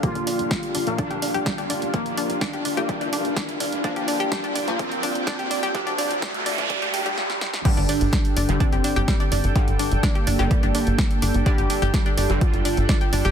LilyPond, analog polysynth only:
\new Staff \with { instrumentName = "Analog polysynth" } { \time 4/4 \key g \minor \tempo 4 = 126 f'2 d'2 | r4 d'2. | d'2 c'2 | r4 a2 r4 |
d'2 c'2 | r4 bes2. | g'2 f'2 | }